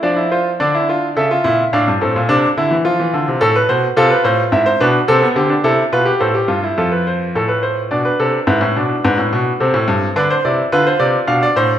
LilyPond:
<<
  \new Staff \with { instrumentName = "Grand piano" } { \time 3/4 \key d \minor \tempo 4 = 107 << { d''8 c''8 d''4 e''4 | f''8 a'2~ a'8 | r16 b'16 c''8 a'16 b'16 c''8 e''16 c''16 b'8 | a'8 g'8 a'8 b'8 c''4 |
a'16 b'16 c''8 a'16 b'16 c''8 d''16 b'16 a'8 | b'4 b'4 a'4 | b'16 c''16 d''8 b'16 c''16 d''8 f''16 d''16 c''8 | } \\ { d'16 e'16 f'8 d'16 e'16 f'8 a'16 f'16 e'8 | d'8 c'8 d'8 e'8 f'4 | a'4 f'4 e'8 d'8 | c'16 b16 c'16 d'16 e'8 f'16 g'16 a'16 g'16 f'16 e'16 |
f'2 d'4 | e'8 d'4. c'4 | d'8 e'8 f'4 d'4 | } >> }
  \new Staff \with { instrumentName = "Grand piano" } { \clef bass \time 3/4 \key d \minor f4 d4 cis8 bes,8 | a,16 g,16 a,16 bes,16 c8 d16 e16 f16 e16 d16 c16 | a,8 b,8 c8 a,8 gis,8 b,8 | c8 d8 c8 b,8 a,8 g,8 |
f,4 a,4 b,8 c8 | gis,16 a,16 b,8 gis,16 a,16 b,8 c16 a,16 g,8 | d8 c8 d8 c8 b,8 a,8 | }
>>